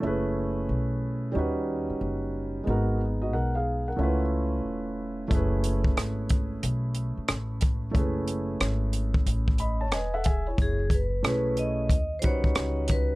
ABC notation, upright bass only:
X:1
M:4/4
L:1/16
Q:"Swing 16ths" 1/4=91
K:F#dor
V:1 name="Upright bass" clef=bass
F,,,4 B,,,4 D,,3 z F,,,4 | G,,,4 B,,,4 C,,4 E,,,4 | F,,,4 G,,,4 B,,,3 z A,,,4 | F,,,4 G,,,4 A,,,4 E,,,4 |
F,,,4 B,,,4 D,,4 C,,4 |]